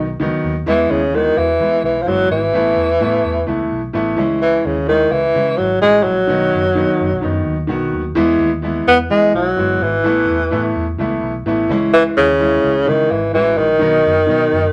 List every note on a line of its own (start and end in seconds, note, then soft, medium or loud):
0.00 0.16 B1 medium
0.00 0.16 D#4 loud
0.20 0.30 C#2 medium
0.20 0.52 D#3 medium
0.20 0.52 F#3 medium
0.20 0.52 B3 medium
0.20 0.53 D#4 medium
0.44 0.63 D#2 medium
0.66 0.86 E2 loud
0.66 0.98 E3 medium
0.66 0.92 E3 loud
0.66 0.99 G#3 medium
0.66 0.99 B3 medium
0.66 0.99 E4 loud
0.90 1.29 D#2 medium
0.90 1.17 C#3 medium
1.13 1.39 D#3 medium
1.13 1.45 E3 medium
1.13 1.46 G#3 medium
1.13 1.46 B3 medium
1.13 1.46 F#4 medium
1.37 1.56 E2 medium
1.37 1.84 E3 loud
1.60 1.92 E3 medium
1.60 1.80 E3 medium
1.60 1.92 G#3 medium
1.60 1.93 B3 medium
1.60 1.93 E4 medium
1.83 2.03 B1 medium
1.83 2.04 E3 medium
2.02 2.39 E3 medium
2.02 2.09 F3 medium
2.07 2.27 G1 medium
2.07 2.31 F#3 loud
2.07 2.39 G#3 medium
2.07 2.39 B3 medium
2.07 2.40 F#4 medium
2.30 2.50 G#1 loud
2.30 3.68 E3 loud
2.53 2.74 A1 medium
2.53 2.85 E3 medium
2.53 2.86 A3 medium
2.53 2.86 B3 medium
2.53 2.86 E4 loud
2.77 2.97 E2 medium
3.00 3.20 A2 loud
3.00 3.33 E3 medium
3.00 3.33 A3 medium
3.00 3.33 B3 medium
3.00 3.33 E4 medium
3.24 3.44 E2 medium
3.46 3.67 C#2 medium
3.46 3.79 E3 medium
3.46 3.79 A3 medium
3.46 3.79 B3 medium
3.46 3.80 E4 medium
3.72 3.91 B1 medium
3.93 4.14 A1 medium
3.93 4.15 E3 medium
3.93 4.18 A3 medium
3.93 4.18 B3 medium
3.93 4.17 E4 medium
4.17 4.57 C#2 loud
4.17 4.74 E3 medium
4.17 4.74 G#3 medium
4.17 4.74 C#4 medium
4.17 4.75 E4 loud
4.42 4.68 E3 loud
4.65 5.04 D#2 medium
4.65 4.88 C#3 medium
4.87 5.13 D#3 loud
4.87 5.20 E3 medium
4.87 5.20 G#3 medium
4.87 5.20 C#4 medium
4.87 5.21 E4 medium
5.12 5.31 C#2 loud
5.12 5.59 E3 medium
5.35 5.55 C#3 loud
5.35 5.67 E3 medium
5.35 5.67 G#3 medium
5.35 5.67 C#4 medium
5.35 5.68 E4 medium
5.57 5.78 G#1 medium
5.57 5.81 F#3 medium
5.81 6.02 A1 medium
5.81 6.14 E3 medium
5.81 6.05 G#3 loud
5.81 6.14 G#3 medium
5.81 6.14 C#4 medium
5.81 6.15 F#4 medium
6.04 6.25 A#1 loud
6.04 7.45 F#3 loud
6.27 6.49 B1 loud
6.27 6.60 D#3 medium
6.27 6.61 F#3 medium
6.27 6.61 B3 medium
6.27 6.61 D#4 loud
6.54 6.82 F#1 medium
6.75 7.07 D#3 medium
6.75 7.08 F#3 medium
6.75 7.08 B3 medium
6.75 7.08 D#4 medium
7.01 7.10 F#1 medium
7.12 7.21 B1 medium
7.21 7.43 F#2 medium
7.21 7.54 D#3 medium
7.21 7.54 F#3 medium
7.21 7.55 B3 medium
7.21 7.55 D#4 medium
7.45 7.65 D#2 medium
7.67 7.89 B1 medium
7.67 8.01 D#3 medium
7.67 8.01 F#3 medium
7.67 8.01 B3 medium
7.67 8.02 F#4 medium
7.93 8.13 D#2 medium
8.15 8.36 E2 medium
8.15 8.48 E3 loud
8.15 8.48 G#3 loud
8.15 8.49 B3 loud
8.15 8.49 E4 loud
8.40 8.79 D#2 medium
8.62 8.95 E3 medium
8.62 8.95 G#3 medium
8.62 8.96 B3 medium
8.62 8.96 E4 medium
8.87 9.07 E2 medium
8.87 8.98 B3 loud
9.10 9.42 E3 medium
9.10 9.30 E3 medium
9.10 9.32 G#3 medium
9.10 9.43 G#3 medium
9.10 9.43 B3 medium
9.10 9.43 E4 medium
9.34 9.54 B1 medium
9.34 9.84 F#3 medium
9.56 9.77 G1 medium
9.56 9.89 E3 medium
9.56 9.90 G#3 medium
9.56 9.90 B3 medium
9.56 9.90 F#4 medium
9.81 10.01 G#1 loud
9.81 10.76 E3 medium
10.04 10.24 A1 loud
10.04 10.36 E3 medium
10.04 10.36 A3 medium
10.04 10.37 B3 medium
10.04 10.37 E4 loud
10.29 10.48 E2 medium
10.51 10.72 A2 loud
10.51 10.83 E3 medium
10.51 10.84 A3 medium
10.51 10.84 B3 medium
10.51 10.84 E4 medium
10.76 10.95 E2 medium
10.98 11.19 C#2 medium
10.98 11.31 E3 medium
10.98 11.31 A3 medium
10.98 11.31 B3 medium
10.98 11.32 E4 medium
11.23 11.42 B1 medium
11.46 11.66 A1 medium
11.46 11.68 E3 medium
11.46 11.70 A3 medium
11.46 11.70 B3 medium
11.46 11.70 E4 medium
11.69 12.08 C#2 medium
11.69 12.26 E3 medium
11.69 12.26 G#3 medium
11.69 12.27 C#4 medium
11.69 12.27 E4 loud
11.93 12.04 E3 loud
12.17 12.56 D#2 medium
12.17 12.90 C#3 loud
12.39 12.72 E3 medium
12.39 12.72 G#3 medium
12.39 12.72 C#4 medium
12.39 12.73 E4 medium
12.64 12.83 C#2 loud
12.85 13.07 C#3 medium
12.85 13.13 D#3 medium
12.85 13.18 E3 medium
12.85 13.18 G#3 medium
12.85 13.19 C#4 medium
12.85 13.19 E4 medium
13.11 13.30 G#1 medium
13.11 13.33 E3 medium
13.33 13.54 A1 medium
13.33 13.66 E3 medium
13.33 13.60 E3 loud
13.33 13.66 G#3 medium
13.33 13.66 C#4 medium
13.33 13.67 F#4 medium
13.58 13.77 A#1 medium
13.58 14.72 D#3 medium
13.79 14.01 B1 loud
13.79 14.12 D#3 medium
13.79 14.13 F#3 medium
13.79 14.13 B3 medium
13.79 14.13 D#4 loud
14.05 14.25 F#1 medium
14.27 14.48 B2 loud
14.27 14.60 D#3 medium
14.27 14.60 F#3 medium
14.27 14.60 B3 medium
14.27 14.61 D#4 medium
14.52 14.72 F#1 medium